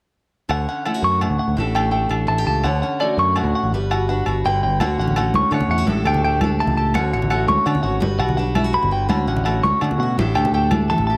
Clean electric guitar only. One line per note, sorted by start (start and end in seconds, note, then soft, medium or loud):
0.51 0.66 F#5 medium
0.69 0.84 F#5 medium
0.86 1.02 F#5 medium
1.04 1.20 C#6 medium
1.21 1.37 F#5 medium
1.39 1.55 F#5 medium
1.75 1.91 G5 medium
1.92 2.08 G5 medium
2.28 2.45 A5 medium
2.47 2.63 A5 medium
2.64 2.81 F#5 medium
2.82 2.99 F#5 medium
3.01 3.17 D5 medium
3.19 3.35 C#6 medium
3.37 3.53 F#5 medium
3.55 3.71 F#5 medium
3.91 4.07 F#5 medium
4.09 4.25 F#5 medium
4.46 4.61 G5 medium
4.63 4.79 G5 medium
4.81 4.97 F#5 medium
4.99 5.15 F#5 medium
5.17 5.33 F#5 medium
5.36 5.51 C#6 medium
5.54 5.69 F#5 medium
5.71 5.87 F#5 medium
6.07 6.23 G5 medium
6.24 6.40 G5 medium
6.60 6.76 A5 medium
6.77 6.93 A5 medium
6.95 7.11 F#5 medium
7.13 7.29 F#5 medium
7.31 7.47 F#5 medium
7.48 7.65 C#6 medium
7.66 7.82 F#5 medium
7.83 8.00 F#5 medium
8.19 8.36 F#5 medium
8.37 8.54 F#5 medium
8.74 8.90 B5 medium
8.92 9.08 G5 medium
9.09 9.26 F#5 medium
9.28 9.44 F#5 medium
9.45 9.61 F#5 medium
9.63 9.80 C#6 medium
9.82 9.98 F#5 medium
10.00 10.16 F#5 medium
10.35 10.52 G5 medium
10.54 10.70 G5 medium
10.90 11.06 A5 medium
11.07 11.17 A5 medium